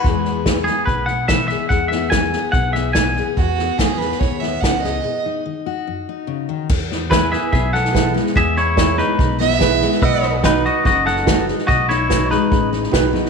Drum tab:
CC |----------------|----------------|----------------|----------------|
HH |----p-------p---|----p-------p---|----p-------p---|----------------|
SD |o-o-o-o-o-o-o-o-|o-o-o-o-o-o-o-o-|o-o-o-ooo-o-o-o-|----------------|
BD |o---o---o---o---|o---o---o---o---|o---o---o---o---|----------------|

CC |x---------------|----------------|----------------|----------------|
HH |----p-------p---|----p-------p---|----p-------p---|----p-------p---|
SD |o-o-o-o-o-ooo-oo|o-o-o-o-o-ooo-oo|o-o-o-o-o-ooo-oo|o-o-o-o-o-ooo-oo|
BD |o---o---o---o---|o---o---o---o---|o---o---o---o---|o---o---o---o---|